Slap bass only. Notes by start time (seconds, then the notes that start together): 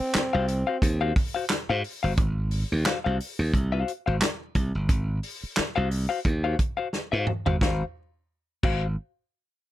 0.00 muted slap bass stroke
0.15 muted slap bass stroke
0.34 C2
0.82 D#2
1.70 G#2
2.04 G1
2.18 G#1
2.72 D#2
3.06 C2
3.39 D#2
3.53 C2
4.07 G#1
4.55 C2
4.75 G1
4.90 G#1
5.43 muted slap bass stroke
5.59 muted slap bass stroke
5.77 C2
6.25 D#2
7.13 G#2
7.47 G1
7.62 G#1
8.64 G#1